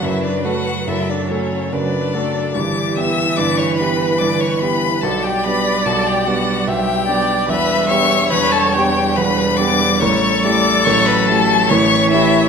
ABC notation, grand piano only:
X:1
M:3/4
L:1/8
Q:1/4=72
K:Glyd
V:1 name="Grand piano"
[F,,,F,,] [A,FA] [F,,,F,,] [A,FA] [F,,,F,,] [A,FA] | [G,,,G,,] [B,EG] [G,,,G,,] [B,EG] [G,,,G,,] [B,EG] | [B,,,B,,] [B,DG] [B,,,B,,] [B,DG] [B,,,B,,] [B,DG] | [K:Edor] [E,,,E,,] [B,DG] [E,,,E,,] [B,DG] [E,,,E,,] [B,DG] |
[A,,,A,,] [A,EG] [A,,,A,,] [A,EG] [A,,,A,,] [A,EG] |]